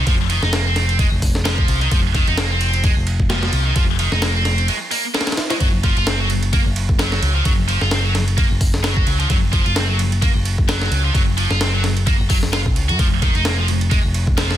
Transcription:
0.07 F1 F3, kick, ride
0.30 D#3, ride
0.43 F1 D#4, snare
0.53 A#3, snare, ride
0.66 C4
0.76 snare, ride
0.89 ride
0.99 G#3, kick, ride
1.12 F1
1.22 kick, open hi-hat
1.35 snare
1.45 F3, snare, ride
1.58 kick
1.68 C2, ride
1.81 D#3, ride
1.91 F1 F3, kick, ride
2.15 D#3, kick, ride
2.27 F1 D#4, ride
2.37 A#3, snare, ride
2.51 C4
2.61 ride
2.73 ride
2.84 G#3, kick, ride
2.97 F1
3.07 ride
3.20 kick
3.30 F3, snare, ride
3.43 snare
3.53 C2, ride
3.66 D#3
3.76 F1 F3, kick, ride
3.99 D#3, ride
4.12 F1 D#4, snare
4.22 A#3, snare, ride
4.35 C4
4.45 snare, ride
4.58 ride
4.68 G#3, ride
4.91 A#3, open hi-hat
5.14 A#3, snare, ride
5.21 snare, ride
5.27 snare, ride
5.32 snare, ride
5.37 snare, ride
5.50 G#3, snare, ride
5.60 F#1 F#3, kick, ride
5.84 F3, kick, ride
5.97 F#1 F4, ride
6.07 C4, snare, ride
6.20 F#3
6.30 ride
6.43 ride
6.53 A#3, kick, ride
6.66 F#1
6.76 ride
6.89 kick
6.99 F#3, snare, ride
7.12 snare
7.22 C#2, ride
7.35 F3
7.45 F#1 F#3, kick, ride
7.68 F3, ride
7.81 F#1 F4, snare
7.91 C4, snare, ride
8.04 F#3
8.15 snare, ride
8.28 ride
8.37 A#3, kick, ride
8.51 F#1
8.61 kick, open hi-hat
8.74 snare
8.83 F#3, snare, ride
8.97 kick
9.07 C#2, ride
9.20 F3, ride
9.30 F#1 F#3, kick, ride
9.53 F3, kick, ride
9.66 F#1 F4, ride
9.76 C4, snare, ride
9.89 F#3
9.99 ride
10.12 ride
10.22 A#3, kick, ride
10.35 F#1
10.45 ride
10.58 kick
10.68 F#3, snare, ride
10.81 snare
10.91 C#2, ride
11.04 F3
11.14 F#1 F#3, kick, ride
11.37 F3, ride
11.50 F#1 F4, snare
11.61 C4, snare, ride
11.73 F#3
11.84 snare, ride
11.97 ride
12.07 A#3, kick, ride
12.19 F#1
12.30 F#3, kick, open hi-hat
12.43 snare
12.53 F4, snare, ride
12.66 A#1, kick
12.76 C#2, ride
12.89 F#2 F#4, ride
12.99 F1 F3, kick, ride
13.22 D#3, kick, ride
13.35 F1 D#4, ride
13.45 A#3, snare, ride
13.58 F3
13.68 ride
13.81 ride
13.91 G#3, kick, ride
14.04 F1
14.14 ride
14.27 kick
14.37 F3, snare, ride
14.51 snare

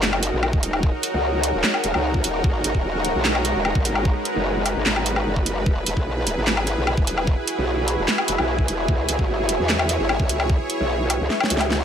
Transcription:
Already playing: F#1 D#4 F#4 G#4 A#4 C#5 F#5 A#5
0.03 snare, clap
0.13 low woodblock
0.23 closed hi-hat
0.33 A#1
0.43 low woodblock
0.53 D#1, kick
0.63 closed hi-hat
0.73 low woodblock
0.83 kick
1.03 closed hi-hat
1.14 C#2
1.43 closed hi-hat
1.54 D#1
1.64 snare, clap
1.74 low woodblock
1.84 D#1, closed hi-hat
1.94 C#2, low woodblock
2.14 kick
2.24 D#1, closed hi-hat
2.44 G#1 G#3 B4, kick
2.64 G#1, closed hi-hat
2.75 D#1, kick
3.05 closed hi-hat
3.15 B1
3.25 snare, clap
3.35 low woodblock
3.45 closed hi-hat
3.55 D#1
3.65 low woodblock
3.75 G#1, kick
3.85 closed hi-hat
3.95 low woodblock
4.05 kick
4.25 closed hi-hat
4.36 F#1
4.66 closed hi-hat, low woodblock
4.76 G#1
4.86 G#1, snare, clap
4.96 low woodblock
5.06 closed hi-hat
5.16 low woodblock
5.26 F#1
5.36 kick
5.46 closed hi-hat
5.66 E1 E4 F#4 G#4, kick
5.86 E1, closed hi-hat
5.97 B1, kick
6.10 B4
6.27 G#5, closed hi-hat
6.37 G#1
6.47 snare, clap
6.57 low woodblock
6.64 E5, closed hi-hat
6.77 B1
6.87 low woodblock
6.97 E1, kick
7.07 closed hi-hat
7.18 low woodblock
7.27 kick
7.47 closed hi-hat
7.58 B1
7.88 closed hi-hat
7.98 E1
8.08 snare, clap
8.18 low woodblock
8.28 E1, closed hi-hat
8.38 B1, low woodblock
8.59 kick
8.68 E1, closed hi-hat
8.88 C#2 C#5, kick
9.09 C#2, closed hi-hat
9.19 G#1, kick
9.49 closed hi-hat
9.59 E2
9.69 snare, clap
9.79 low woodblock
9.89 closed hi-hat
9.99 G#1
10.09 low woodblock
10.20 C#2, kick
10.29 closed hi-hat
10.40 low woodblock
10.50 kick
10.70 closed hi-hat
10.80 B1
11.10 closed hi-hat, low woodblock
11.20 C#2
11.30 snare
11.40 snare, low woodblock
11.50 C#2, closed hi-hat
11.57 snare, closed hi-hat, low woodblock
11.70 snare

